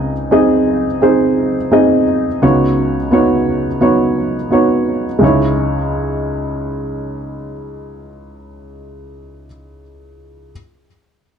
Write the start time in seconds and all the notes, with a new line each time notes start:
Already playing: C#2 C#3 C4 D#4 G#4 D#5
0.31 C4 D#4 G#4 D#5
1.02 C4 D#4 G#4 C5
1.72 C4 D#4 G#4 D#5
2.42 C#2 C#3 B3 D#4 F#4 C#5
3.11 B3 D#4 F#4 C#5
3.81 B3 D#4 F#4 C#5
4.51 B3 D#4 F#4 C#5
5.19 C#2 G#3 D#4 E4
5.24 C#5